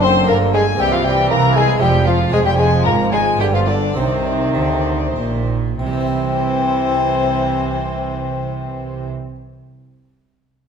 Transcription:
Already playing: F#1 F#2 D3 A3 D4 F#4
0.03 C4 C5 C6
0.23 A#3 D4 G4
0.28 G1 G2 A#3 A#4 A#5
0.54 G#3 G#4 G#5
0.75 C2 C3 A#3 C4 E4 G5
0.79 C3 E3 G3 G4
0.92 F3 F4 F5
1.04 G3 G4 G5
1.29 C2 A#3 A#4 A#5
1.55 G#3 G#4 G#5
1.76 G#3 C4 F4
1.81 F1 F2 F3 G3 G4 G5
2.06 F3 F4 F5
2.28 F1 G#3 D4 F4 G#5
2.33 F2 F3 G#3 G#4
2.45 G3 G4 G5
2.58 G#3 G#4 G#5
2.85 G#1 G#2 A#3 A#4 A#5
3.12 G#3 G#4 G#5
3.37 G1 G2 D3 B3 F4 G4 G5
3.41 G3
3.54 F3 F4 F5
3.68 D3 D4 D5
3.94 C2 C3 D#3 C4 D#4 C5
4.05 D5
4.14 C5
4.24 D5
4.33 C5
4.42 D5
4.52 D2 D3 C5
4.60 D5
4.70 C5
4.79 D5
4.88 C5
4.98 D5
5.07 C5
5.16 A#1 A#2
5.79 C2 C3 E3 C4 C5
5.86 G3
5.93 C4
6.00 E4
6.07 C5

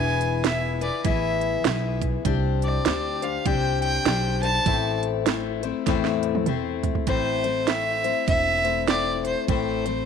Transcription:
Already playing: E1 E3 B3 E4 G#4 B4 G#5
0.21 closed hi-hat
0.44 B3 E4 G#4 B4 E5, snare, closed hi-hat
0.81 E4 G#4 B4 D5, closed hi-hat
1.04 A1 E3 B3 E4 G#4 B4 E5, kick, closed hi-hat
1.41 closed hi-hat
1.64 B1 B3 E4 G#4 B4, snare, closed hi-hat
2.02 kick, closed hi-hat
2.25 C2 C4 D4 G4 C5, kick, closed hi-hat
2.62 D5, closed hi-hat
2.85 D2 C4 D4 G4 C5, snare, closed hi-hat
3.22 D4 G4 C5 F5, closed hi-hat
3.46 C2 C4 D4 G4 C5 G5, kick, closed hi-hat
3.82 G5, closed hi-hat
4.05 B1 C4 D4 G4 C5, snare, closed hi-hat
4.43 D4 G4 C5 A5, closed hi-hat
4.66 A1 A2 E3 A3 C4 E4 C5, kick, closed hi-hat
5.03 closed hi-hat
5.26 A3 C4 E4 C5, snare, closed hi-hat
5.63 A3 C4 E4 C5, closed hi-hat
5.87 E2 A2 E3 A3 C4 E4 C5, kick, snare, closed hi-hat
6.05 snare
6.23 closed hi-hat
6.35 high tom
6.46 A3 C4 E4 C5, closed hi-hat, mid tom
6.83 closed hi-hat, floor tom
6.95 floor tom
7.07 A1 A2 E3 A3 C4 E4 C5, kick, closed hi-hat
7.44 A3 C4 E4 C5, closed hi-hat
7.67 A3 C4 E4 C5 E5, snare, closed hi-hat
8.04 A3 C4 E4 C5, closed hi-hat
8.28 E1 E5, kick, closed hi-hat
8.64 A3 C4 E4 C5, closed hi-hat
8.87 A3 C4 E4 C5 D5, snare, closed hi-hat
9.25 C5, closed hi-hat
9.48 A1 A2 E3 A3 C4 E4 C5, kick, closed hi-hat
9.85 A3 C4 E4 C5, closed hi-hat

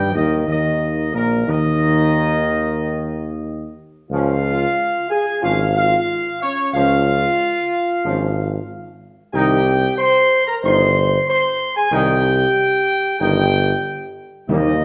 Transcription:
Already playing: G2 G3 G4 G5
0.13 D#2 D#3 D#4 D#5
0.46 D#2 D#3 D#4 D#5
1.13 A#1 A#2 A#3 A#4
1.47 D#2 D#3 D#4 D#5
4.10 C#2 F3 C#4 F4 F5
5.10 G#4 G#5
5.41 G#1 F3 C#4 F4 F5
5.76 F4 F5
6.41 C#4 C#5
6.73 C#2 F3 C#4 F4 F5
8.04 G#1 F3 C#4
9.33 C2 D#3 D#4 G4 G5
9.98 C5 C6
10.47 A#4 A#5
10.63 G1 D#3 D#4 C5 C6
11.28 C5 C6
11.76 G#4 G#5
11.91 C2 D#3 D#4 G4 G5
13.20 G1 D#3 D#4 G4 G5
14.48 D#2 D#3 G3 A#3 D#4 D#5

